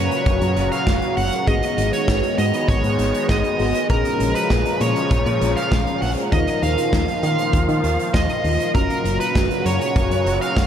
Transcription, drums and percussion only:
0.11 closed hi-hat
0.26 kick, closed hi-hat
0.41 closed hi-hat
0.56 closed hi-hat
0.72 closed hi-hat
0.87 kick, snare
1.02 closed hi-hat
1.17 open hi-hat
1.32 closed hi-hat
1.47 kick, closed hi-hat
1.63 closed hi-hat
1.78 closed hi-hat
1.93 closed hi-hat
2.08 kick, snare
2.23 closed hi-hat
2.38 closed hi-hat
2.54 closed hi-hat
2.68 kick, closed hi-hat
2.84 closed hi-hat
2.99 closed hi-hat
3.14 closed hi-hat
3.29 kick, snare
3.44 closed hi-hat
3.59 open hi-hat
3.75 closed hi-hat
3.90 kick, closed hi-hat
4.05 closed hi-hat
4.20 closed hi-hat
4.35 closed hi-hat
4.50 kick, snare
4.66 closed hi-hat
4.81 closed hi-hat
4.96 closed hi-hat
5.11 kick, closed hi-hat
5.26 closed hi-hat
5.41 closed hi-hat
5.57 closed hi-hat
5.72 kick, snare
5.87 closed hi-hat
6.02 open hi-hat
6.17 closed hi-hat
6.32 kick, closed hi-hat
6.48 closed hi-hat
6.63 closed hi-hat
6.78 closed hi-hat
6.93 kick, snare
7.08 closed hi-hat
7.23 closed hi-hat
7.38 closed hi-hat
7.53 kick, closed hi-hat
7.69 closed hi-hat
7.84 closed hi-hat
7.99 closed hi-hat
8.14 kick, snare
8.29 closed hi-hat
8.44 open hi-hat
8.60 closed hi-hat
8.75 kick, closed hi-hat
8.90 closed hi-hat
9.05 closed hi-hat
9.20 closed hi-hat
9.35 kick, snare
9.51 closed hi-hat
9.66 closed hi-hat
9.81 closed hi-hat
9.96 kick, closed hi-hat
10.11 closed hi-hat
10.26 closed hi-hat
10.42 closed hi-hat
10.57 kick, snare

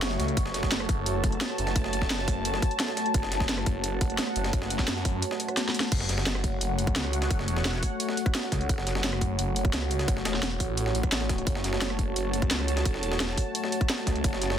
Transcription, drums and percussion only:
0.02 snare, closed hi-hat
0.11 snare
0.20 snare, closed hi-hat
0.28 closed hi-hat
0.37 kick, closed hi-hat
0.46 snare
0.54 snare, closed hi-hat
0.63 kick, snare
0.72 snare, closed hi-hat
0.80 cross-stick
0.89 kick, closed hi-hat
1.06 closed hi-hat
1.24 kick, closed hi-hat
1.32 closed hi-hat
1.41 snare, closed hi-hat
1.50 cross-stick
1.58 closed hi-hat
1.67 snare, closed hi-hat
1.76 kick, closed hi-hat
1.84 snare
1.93 closed hi-hat
2.02 kick, snare
2.10 snare, closed hi-hat
2.19 snare
2.28 kick, closed hi-hat, open hi-hat
2.45 closed hi-hat
2.54 snare
2.62 kick, closed hi-hat
2.71 closed hi-hat
2.80 snare, closed hi-hat
2.88 snare
2.97 snare, closed hi-hat
3.06 closed hi-hat
3.14 kick, closed hi-hat
3.23 snare
3.32 snare, closed hi-hat
3.40 kick, snare
3.49 snare, closed hi-hat
3.58 cross-stick
3.66 kick, closed hi-hat
3.84 closed hi-hat
4.01 kick, closed hi-hat
4.10 closed hi-hat
4.18 snare, closed hi-hat
4.27 cross-stick
4.36 closed hi-hat
4.44 snare, closed hi-hat
4.53 kick, closed hi-hat
4.62 snare
4.70 closed hi-hat
4.79 kick, snare, closed hi-hat
4.88 snare, closed hi-hat
4.96 snare
5.05 kick, closed hi-hat, open hi-hat
5.22 closed hi-hat
5.31 snare
5.40 closed hi-hat
5.48 cross-stick, closed hi-hat
5.57 snare, closed hi-hat
5.69 snare
5.74 closed hi-hat
5.80 snare, closed hi-hat
5.92 kick, closed hi-hat, crash
6.00 snare
6.09 snare, closed hi-hat
6.18 snare
6.26 snare, closed hi-hat
6.35 cross-stick
6.44 kick, closed hi-hat
6.61 closed hi-hat
6.79 closed hi-hat
6.87 kick, closed hi-hat
6.96 snare, closed hi-hat
7.05 cross-stick
7.13 closed hi-hat
7.22 snare, closed hi-hat
7.31 kick, closed hi-hat
7.39 snare
7.48 closed hi-hat
7.57 snare
7.65 snare, closed hi-hat
7.74 snare
7.83 kick, closed hi-hat, open hi-hat
8.00 closed hi-hat
8.09 snare
8.17 closed hi-hat
8.26 kick, cross-stick, closed hi-hat
8.35 snare, closed hi-hat
8.43 snare
8.52 kick, snare, closed hi-hat
8.61 closed hi-hat
8.69 kick, closed hi-hat
8.78 snare
8.87 snare, closed hi-hat
8.95 snare
9.04 snare, closed hi-hat
9.13 cross-stick
9.21 kick, closed hi-hat
9.39 closed hi-hat
9.56 closed hi-hat
9.65 kick, closed hi-hat
9.73 snare, closed hi-hat
9.82 cross-stick
9.91 closed hi-hat
9.99 snare, closed hi-hat
10.08 kick, closed hi-hat
10.17 snare
10.25 snare, closed hi-hat
10.34 snare
10.43 snare, closed hi-hat
10.60 kick, closed hi-hat, open hi-hat
10.77 closed hi-hat
10.86 snare
10.95 closed hi-hat
11.03 kick, cross-stick, closed hi-hat
11.12 snare, closed hi-hat
11.21 snare
11.29 kick, snare, closed hi-hat
11.38 closed hi-hat
11.47 kick, closed hi-hat
11.55 snare
11.64 snare, closed hi-hat
11.73 snare
11.81 snare, closed hi-hat
11.90 cross-stick
11.99 kick, closed hi-hat
12.16 closed hi-hat
12.33 closed hi-hat
12.42 kick, closed hi-hat
12.51 snare, closed hi-hat
12.59 cross-stick
12.68 closed hi-hat
12.77 snare, closed hi-hat
12.85 kick, closed hi-hat
12.94 snare
13.03 closed hi-hat
13.12 snare
13.20 snare, closed hi-hat
13.29 snare
13.38 kick, closed hi-hat, open hi-hat
13.55 closed hi-hat
13.64 snare
13.72 closed hi-hat
13.81 kick, cross-stick, closed hi-hat
13.90 snare, closed hi-hat
13.98 snare
14.07 kick, snare, closed hi-hat
14.16 closed hi-hat
14.24 kick, closed hi-hat
14.33 snare
14.42 snare, closed hi-hat
14.50 snare

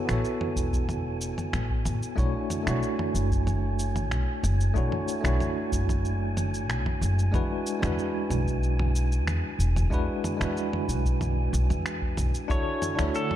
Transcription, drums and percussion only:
0.09 finger snap, shaker
0.25 shaker
0.41 mid tom
0.56 kick, shaker
0.73 kick, shaker
0.89 mid tom, shaker
1.21 shaker
1.38 mid tom, shaker
1.53 finger snap, shaker
1.70 kick
1.85 mid tom, shaker
2.03 shaker
2.18 kick, shaker
2.50 mid tom, shaker
2.67 finger snap, shaker
2.83 shaker
2.99 mid tom
3.15 shaker
3.31 kick, shaker
3.47 mid tom, shaker
3.79 shaker
3.96 mid tom, shaker
4.11 finger snap, shaker
4.44 mid tom, shaker
4.61 shaker
4.76 kick, shaker
4.92 mid tom
5.08 shaker
5.25 finger snap, shaker
5.40 mid tom, shaker
5.72 kick, shaker
5.89 kick, mid tom, shaker
6.05 shaker
6.37 mid tom, shaker
6.54 shaker
6.70 finger snap, shaker
6.86 kick, mid tom
7.02 shaker
7.19 shaker
7.34 kick, mid tom, shaker
7.67 shaker
7.83 finger snap, mid tom, shaker
7.99 shaker
8.30 mid tom, shaker
8.47 kick, shaker
8.63 shaker
8.79 mid tom
8.95 shaker
9.12 shaker
9.27 finger snap, mid tom, shaker
9.60 shaker
9.76 mid tom, shaker
9.92 kick, shaker
10.24 mid tom, shaker
10.41 finger snap, shaker
10.57 shaker
10.73 mid tom
10.89 kick, shaker
11.05 kick, shaker
11.21 mid tom, shaker
11.54 shaker
11.70 mid tom, shaker
11.86 finger snap, shaker
12.02 kick
12.17 mid tom, shaker
12.35 shaker
12.50 kick, shaker
12.82 mid tom, shaker
12.99 finger snap, shaker
13.15 shaker
13.31 mid tom

